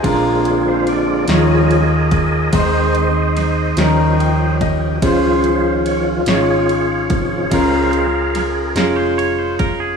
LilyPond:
<<
  \new Staff \with { instrumentName = "Clean electric guitar" } { \time 6/8 \key bes \dorian \tempo 4. = 48 r2. | r2. | r2. | r4. bes'16 c''16 des''16 c''16 bes'16 aes'16 | }
  \new Staff \with { instrumentName = "Tonewheel organ" } { \time 6/8 \key bes \dorian << { aes'8. c''16 d''8 ees''4. | ees''2~ ees''8 r8 | aes'8. c''16 des''8 des''4. | f''4 r2 | } \\ { <d' f'>4. <aes' bes'>4. | <ees' c''>2~ <ees' c''>8 r8 | <des' f'>4. <f' aes'>4. | <aes' bes'>4. r4. | } >> }
  \new Staff \with { instrumentName = "Tonewheel organ" } { \clef bass \time 6/8 \key bes \dorian <d aes c'>4. <f aes des'>8 r4 | <ees aes c'>8 r4 <f des' g'>4. | <ees f c''>4. r4 <c ees f>8 | <des aes c''>8 r2 r8 | }
  \new Staff \with { instrumentName = "Grand piano" } { \time 6/8 \key bes \dorian << { <ees'' aes''>16 r2 r8. | r2 g''8 ees''8 | r2. | r2. | } \\ { <aes d' f' bes'>4 r8 <aes ees' f' des''>4 r8 | <aes c' ees' c''>4 r8 <g des' ees' bes'>4 r8 | <aes des' f' c''>4 r8 <aes des' ees' f' des''>4 r8 | <aes des' f' bes'>4 r8 <aes des' f' aes'>4 r8 | } >> }
  \new Staff \with { instrumentName = "Grand piano" } { \clef bass \time 6/8 \key bes \dorian bes,4. ees4. | ees4. ees4. | des4. r4. | des4. r4. | }
  \new Staff \with { instrumentName = "Fingered electric bass" } { \clef bass \time 6/8 \key bes \dorian bes,,4. ees,4. | ees,4. ees,4. | des,4. aes,,4. | des,4. f,,4. | }
  \new DrumStaff \with { instrumentName = "Drums" } \drummode { \time 6/8 <bd cymr>8 cymr8 cymr8 <cymr sn>8 cymr8 <bd cymr>8 | <bd cymr>8 cymr8 <cymr sn>8 <cymr sn>8 cymr8 <bd cymr>8 | <bd cymr>8 cymr8 cymr8 <cymr sn>8 cymr8 <bd cymr>8 | <bd cymr>8 cymr8 <cymr sn>8 <cymr sn>8 cymr8 <bd cymr>8 | }
>>